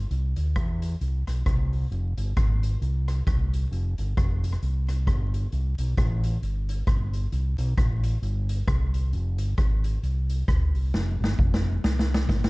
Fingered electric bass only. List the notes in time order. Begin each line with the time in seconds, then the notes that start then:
0.10 C2
0.37 D2
0.56 E2
1.01 C2
1.27 B1
1.46 C2
1.91 F1
2.17 G1
2.36 G#1
2.81 C2
3.27 C2
3.71 F1
3.98 G1
4.17 F1
4.62 C2
5.07 G1
5.52 C2
5.78 B1
5.98 A1
6.42 G1
6.87 G1
7.32 C2
7.58 B1
7.77 A1
8.22 G1
8.67 C2
9.13 F1
9.39 G1
9.58 G#1
10.03 C2
10.48 D2
10.74 C2
10.94 F1
11.20 G1
11.39 F1
11.84 C2
12.29 G1